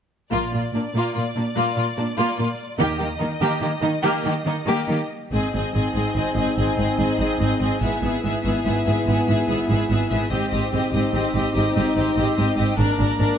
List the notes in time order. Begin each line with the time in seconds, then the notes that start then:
0.31 A#1 A#2 A#3 F4 D5
0.53 A#2 A#3 F4
0.74 A#2 A#3 D4
0.94 A#2 A#3 F4
1.14 A#2 A#3 F4
1.36 A#2 A#3 D4
1.56 A#2 A#3 F4
1.76 A#2 A#3 F4
1.97 A#2 A#3 D4
2.17 A#2 A#3 F4
2.39 A#2 A#3 F4
2.79 D#2 D#3 A#3 G4 D#5
2.99 D#3 A#3 G4
3.20 D#3 A#3 D#4
3.40 D#3 A#3 G4
3.61 D#3 A#3 G4
3.82 D#3 A#3 D#4
4.03 D#3 A#3 G4
4.24 D#3 A#3 G4
4.46 D#3 A#3 D#4
4.67 D#3 A#3 G4
4.89 D#3 A#3 G4
5.31 G#1 G#2 C4 D#4 G#4 D#5
5.54 G#1 G#2 C4 G#4 D#5
5.74 G#1 G#2 C4 G#4 D#5
5.94 G#1 G#2 C4 G#4 D#5
6.14 G#1 G#2 C4 G#4 D#5
6.36 G#1 G#2 C4 G#4 D#5
6.57 G#1 G#2 C4 G#4 D#5
6.77 G#1 G#2 C4 G#4 D#5
6.98 G#1 G#2 C4 G#4 D#5
7.19 G#1 G#2 C4 G#4 D#5
7.40 G#1 G#2 C4 G#4 D#5
7.61 G#1 G#2 C4 G#4 D#5
7.81 G#1 G#2 B3 E4 G#4 E5
8.02 G#1 G#2 B3 G#4 E5
8.23 G#1 G#2 B3 G#4 E5
8.43 G#1 G#2 B3 G#4 E5
8.64 G#1 G#2 B3 G#4 E5
8.85 G#1 G#2 B3 G#4 E5
9.06 G#1 G#2 B3 G#4 E5
9.28 G#1 G#2 B3 G#4 E5
9.48 G#1 G#2 B3 G#4 E5
9.68 G#1 G#2 B3 G#4 E5
9.89 G#1 G#2 B3 G#4 E5
10.10 G#1 G#2 B3 G#4 E5
10.31 G#1 G#2 C4 D#4 G4 D#5
10.51 G#1 G#2 C4 G4 D#5
10.71 G#1 G#2 C4 G4 D#5
10.92 G#1 G#2 C4 G4 D#5
11.13 G#1 G#2 C4 G4 D#5
11.34 G#1 G#2 C4 G4 D#5
11.54 G#1 G#2 C4 G4 D#5
11.75 G#1 G#2 C4 G4 D#5
11.96 G#1 G#2 C4 G4 D#5
12.16 G#1 G#2 C4 G4 D#5
12.36 G#1 G#2 C4 G4 D#5
12.56 G#1 G#2 C4 G4 D#5
12.77 G#1 G#2 A#3 D4 A#4 D5
12.98 G#1 G#2 D4 A#4 D5
13.18 G#1 G#2 D4 A#4 D5